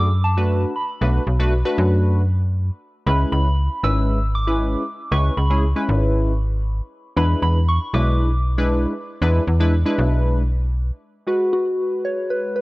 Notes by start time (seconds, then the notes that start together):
Already playing: F#2
0.00 D6
0.24 A5
0.37 A3 D4 F#4 B4
0.76 B5
1.01 B1 A3 D4 F#4 B4
1.27 B1
1.40 A3 D4 F#4 B4
1.65 A3 D4 F#4 B4
1.78 F#2
3.06 C#2 G#3 C#4 E4 B4 B5
3.32 C#2 B5
3.83 G#1 G#3 C#4 E4 B4 E6
4.35 D6
4.47 G#3 C#4 E4 B4
5.11 C#2 G#3 C#4 E4 B4 C#6
5.37 C#2 B5
5.50 G#3 C#4 E4 G#4
5.76 G#3 C#4 E4 B4
5.89 G#1
7.16 E2 G#3 D4 E4 B4 B5
7.42 E2 B5
7.69 C#6
7.94 B1 G#3 D4 E4 B4 D6
8.58 G#3 D4 E4 B4
9.22 E2 G#3 D4 E4 B4
9.47 E2
9.60 G#3 D4 E4 B4
9.86 G#3 D4 E4 B4
9.99 B1
11.26 G#3 F#4 B4
11.53 F#4
12.05 C#5
12.30 B4
12.56 B4